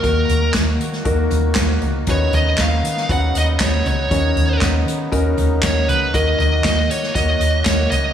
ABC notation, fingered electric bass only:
X:1
M:4/4
L:1/8
Q:1/4=118
K:Ebm
V:1 name="Fingered electric bass" clef=bass
E,, E,, E,, E, E,, E,, E,, D,, | ^D,, D,, D,, ^D, D,, D,, D,, ^C,, | ^D,, D,, D,, ^D, D,, D,, D,, ^C,, | E,, E,, E,, E, E,, E,, E,, D,, |]